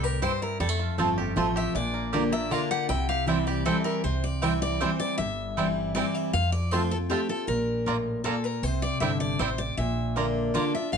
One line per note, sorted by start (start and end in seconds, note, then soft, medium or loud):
0.00 0.24 C2 medium
0.00 0.20 A2 medium
0.00 0.18 C3 medium
0.00 0.38 G3 medium
0.00 0.57 G4 medium
0.00 0.22 A#4 loud
0.22 0.58 G2 medium
0.22 0.31 C4 medium
0.22 0.60 C4 medium
0.22 0.32 E4 medium
0.22 0.41 C5 medium
0.22 0.32 C5 medium
0.22 0.32 G5 medium
0.42 0.61 E4 medium
0.42 0.60 A#4 medium
0.60 0.86 F2 medium
0.60 1.33 F2 loud
0.60 0.69 G3 medium
0.60 1.33 A4 medium
0.69 0.97 A3 medium
0.79 1.33 F4 medium
0.98 1.31 G1 medium
0.98 1.17 F3 medium
0.98 1.36 A3 medium
0.98 1.17 A3 medium
0.98 1.08 C4 medium
0.98 1.18 C4 loud
0.98 1.08 F4 medium
0.98 1.16 F4 loud
0.98 1.08 C5 loud
0.98 1.08 A5 loud
1.18 1.36 C4 medium
1.18 1.36 F4 medium
1.18 1.55 G4 medium
1.36 1.69 A1 medium
1.36 1.73 F3 medium
1.36 1.73 A3 medium
1.36 1.75 A3 medium
1.36 1.46 C4 medium
1.36 1.73 C4 medium
1.36 1.46 F4 medium
1.36 1.73 F4 medium
1.36 1.46 C5 medium
1.36 1.46 A5 loud
1.56 1.75 G4 medium
1.56 1.75 E5 loud
1.75 2.54 A#1 medium
1.75 2.48 A#2 medium
1.75 2.29 D4 medium
1.75 2.29 D5 medium
1.94 2.31 A#3 medium
2.13 2.32 D3 loud
2.13 2.22 A#3 medium
2.13 2.32 A#3 loud
2.13 2.32 D4 loud
2.13 2.22 F4 medium
2.13 2.31 F4 loud
2.13 2.67 G4 medium
2.13 2.23 D5 loud
2.13 2.23 A#5 medium
2.32 2.86 A#3 medium
2.32 2.50 D4 medium
2.32 2.50 F4 medium
2.32 2.52 E5 loud
2.50 2.87 D3 medium
2.50 2.60 A#3 medium
2.50 2.88 A#3 medium
2.50 2.89 D4 medium
2.50 2.88 D4 medium
2.50 2.61 F4 medium
2.50 2.88 F4 medium
2.50 2.61 D5 medium
2.50 2.70 F5 medium
2.50 2.61 A#5 medium
2.71 2.90 G4 medium
2.71 2.89 F#5 loud
2.89 3.68 C2 medium
2.89 3.62 C3 loud
2.89 3.44 E4 medium
2.89 3.08 G5 loud
3.09 3.46 G4 medium
3.09 3.27 F5 loud
3.26 3.63 E3 medium
3.26 3.64 G3 medium
3.26 3.82 G3 medium
3.26 3.37 C4 medium
3.26 3.64 C4 medium
3.26 3.64 E4 loud
3.26 3.37 E4 medium
3.26 3.37 C5 medium
3.26 3.46 E5 medium
3.26 3.38 G5 medium
3.47 4.01 G4 medium
3.47 3.65 D5 loud
3.65 4.02 E3 medium
3.65 4.02 G3 medium
3.65 3.75 C4 medium
3.65 4.04 C4 medium
3.65 4.03 C4 medium
3.65 3.75 E4 medium
3.65 4.03 E4 medium
3.65 3.84 A4 medium
3.65 3.75 C5 medium
3.65 3.77 E5 medium
3.65 3.76 G5 medium
3.84 4.04 E4 medium
3.84 4.03 A#4 medium
4.04 4.83 C2 medium
4.04 4.77 C3 medium
4.04 4.24 C5 medium
4.24 4.42 D5 medium
4.42 4.79 E3 medium
4.42 4.79 G3 medium
4.42 4.51 G3 medium
4.42 4.51 C4 medium
4.42 4.79 C4 loud
4.42 4.52 C4 medium
4.42 4.52 E4 medium
4.42 4.80 E4 medium
4.42 4.52 E4 medium
4.42 4.52 C5 medium
4.42 4.62 E5 loud
4.42 4.52 G5 medium
4.62 4.81 D5 loud
4.80 5.17 E3 medium
4.80 5.17 G3 medium
4.80 4.90 G3 medium
4.80 4.90 C4 medium
4.80 5.18 C4 medium
4.80 4.90 C4 medium
4.80 4.90 E4 medium
4.80 5.18 E4 medium
4.80 4.90 E4 medium
4.80 5.01 C5 medium
4.80 4.90 C5 medium
4.80 4.90 G5 medium
4.99 5.17 D5 loud
5.18 5.98 G1 medium
5.18 5.92 G2 medium
5.18 5.94 E5 loud
5.57 5.93 E3 medium
5.57 5.94 G3 medium
5.57 5.66 G3 medium
5.57 5.66 C4 medium
5.57 5.94 C4 medium
5.57 5.66 C4 medium
5.57 5.67 E4 medium
5.57 5.94 E4 medium
5.57 5.67 E4 medium
5.57 5.67 C5 medium
5.57 5.67 G5 medium
5.95 6.32 E3 medium
5.95 6.32 G3 medium
5.95 6.05 G3 medium
5.95 6.05 C4 medium
5.95 6.32 C4 medium
5.95 6.05 C4 medium
5.95 6.05 E4 medium
5.95 6.32 E4 medium
5.95 6.05 E4 medium
5.95 6.05 C5 medium
5.95 6.14 D5 loud
5.95 6.05 G5 medium
6.14 6.33 E5 loud
6.33 7.12 F2 medium
6.33 7.07 F2 medium
6.33 6.52 F5 loud
6.52 6.71 D5 loud
6.71 6.91 F3 medium
6.71 6.91 A3 medium
6.71 6.81 A3 medium
6.71 6.81 C4 medium
6.71 6.91 C4 loud
6.71 6.81 C4 medium
6.71 6.81 F4 medium
6.71 6.90 F4 loud
6.71 6.81 F4 medium
6.71 6.92 C5 loud
6.71 6.81 C5 medium
6.71 6.82 A5 medium
6.91 7.09 C4 soft
6.91 7.09 F4 medium
6.91 6.96 A4 medium
7.09 7.28 F3 medium
7.09 7.29 A3 medium
7.09 7.19 A3 medium
7.09 7.19 C4 medium
7.09 7.29 C4 medium
7.09 7.19 C4 medium
7.09 7.27 F4 medium
7.09 7.20 F4 medium
7.09 7.19 F4 medium
7.09 7.29 G4 medium
7.09 7.20 C5 medium
7.09 7.20 A5 medium
7.29 7.48 C4 soft
7.29 7.47 F4 medium
7.29 7.47 A4 medium
7.47 8.27 A#1 medium
7.47 8.21 A#2 medium
7.47 8.21 A#4 loud
7.86 8.23 A2 medium
7.86 7.96 A#3 medium
7.86 7.90 D4 medium
7.86 7.96 F4 medium
7.86 7.96 D5 medium
7.86 7.96 A#5 medium
8.24 8.61 A#2 medium
8.24 8.34 A#3 medium
8.24 8.28 D4 medium
8.24 8.34 F4 medium
8.24 8.44 A4 medium
8.24 8.34 D5 medium
8.24 8.34 A#5 medium
8.44 8.63 A#4 medium
8.63 8.89 C2 medium
8.63 9.36 C3 medium
8.63 8.83 C5 loud
8.82 9.00 D5 loud
9.00 9.34 G1 medium
9.00 9.38 D3 medium
9.00 9.10 G3 medium
9.00 9.10 C4 medium
9.00 9.11 E4 medium
9.00 9.11 C5 medium
9.00 9.20 E5 loud
9.00 9.11 G5 loud
9.20 9.40 D5 medium
9.39 9.72 A1 medium
9.39 9.76 C3 medium
9.39 9.49 G3 medium
9.39 9.49 C4 medium
9.39 9.49 E4 medium
9.39 9.59 C5 medium
9.39 9.49 C5 medium
9.39 9.49 G5 loud
9.58 9.76 D5 medium
9.77 10.56 A#1 medium
9.77 10.51 A#2 medium
9.77 10.50 E5 loud
10.16 10.52 D3 medium
10.16 10.25 A#3 medium
10.16 10.53 A#3 medium
10.16 10.25 A#3 medium
10.16 10.53 D4 medium
10.16 10.19 D4 medium
10.16 10.25 F4 medium
10.16 10.53 F4 loud
10.16 10.26 D5 medium
10.16 10.26 A#5 medium
10.54 10.73 D3 medium
10.54 10.63 A#3 medium
10.54 10.73 A#3 medium
10.54 10.63 A#3 medium
10.54 10.73 D4 medium
10.54 10.58 D4 medium
10.54 10.64 F4 medium
10.54 10.73 F4 medium
10.54 10.74 D5 medium
10.54 10.64 D5 medium
10.54 10.64 A#5 medium
10.74 10.93 D4 medium
10.74 10.92 F4 medium
10.74 10.92 E5 medium
10.92 10.97 F1 medium
10.92 10.97 F2 medium
10.92 10.97 F5 loud